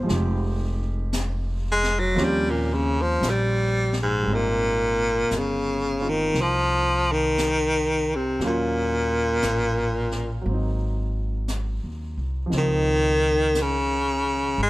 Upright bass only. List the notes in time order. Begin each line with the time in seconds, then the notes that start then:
0.09 F1
2.16 D#2
3.21 A#1
4.26 G#1
5.31 G1
6.34 C2
8.40 D#2
9.43 A1
10.46 G#1
11.84 D#2
12.17 C2
12.52 C#2
14.58 G#1